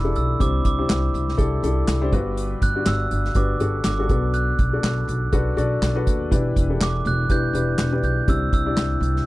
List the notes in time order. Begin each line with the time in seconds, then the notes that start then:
Already playing: E1 E3 D4 E4 G4 A4 B4 D5 E6
0.04 D4 E4 G4 A4
0.16 B1 E6, closed hi-hat
0.39 C2 C3 D4 E4 G4 C5 D6, kick, closed hi-hat
0.65 C2 D6, kick, closed hi-hat
0.78 D4 E4 G4 C5
0.89 C2, snare, clap, closed hi-hat
1.14 C2, closed hi-hat
1.28 snare
1.37 C2 D4 E4 G4 A4, kick, closed hi-hat
1.63 C2 D4 E4 G4 A4, closed hi-hat
1.88 C2, snare, clap, closed hi-hat
2.01 D4 E4 G4 C5
2.12 G1 G2 D4 F#4 G4 B4, kick, closed hi-hat
2.37 closed hi-hat
2.62 G1 F#6, kick, closed hi-hat
2.75 D4 F#4 G4 D5
2.86 G1 E6, snare, clap, closed hi-hat
3.11 G1, closed hi-hat
3.25 snare
3.35 G1 D4 F#4 G4 B4 D6, kick, closed hi-hat
3.60 G1 D4 F#4 G4 A4, closed hi-hat
3.84 G1 D6, snare, clap, closed hi-hat
3.99 D4 F#4 G4 A4
4.09 B1 B2 D4 F#4 A4 B4, kick, closed hi-hat
4.34 F#6, closed hi-hat
4.59 B1, kick, closed hi-hat
4.73 D4 F#4 A4 D5
4.83 B1, snare, clap, closed hi-hat
5.08 B1, closed hi-hat
5.32 B1 D4 F#4 A4 B4, kick, closed hi-hat
5.56 B1 D4 F#4 A4 D5, closed hi-hat
5.82 B1, snare, clap, closed hi-hat
5.95 D4 F#4 A4 B4
6.07 D#2, kick, closed hi-hat
6.31 E1 E3 D4 E4 G4 B4, kick, closed hi-hat
6.56 E1, kick, closed hi-hat
6.70 D4 E4 G4 A4
6.80 E1 D6, snare, clap, closed hi-hat
7.05 E1 F#6, closed hi-hat
7.29 E1 D4 E4 G4 B4 G6, kick, closed hi-hat
7.53 E1 D4 E4 G4 B4, closed hi-hat
7.78 E1, snare, clap, closed hi-hat
7.92 D4 E4 G4 B4
8.03 B1 G6, closed hi-hat
8.27 C2 C3 D4 E4 G4 C5 E6, kick, closed hi-hat
8.53 C2 E6, kick, closed hi-hat
8.66 D4 E4 G4 D5
8.76 C2, snare, clap, closed hi-hat
9.01 C2, closed hi-hat
9.16 snare